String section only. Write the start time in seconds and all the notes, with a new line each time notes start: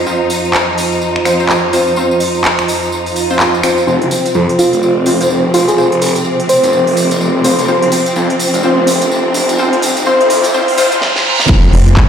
Already playing: F2 F3 D#4
3.87 C3 F3 C4
11.49 C3 F3 C4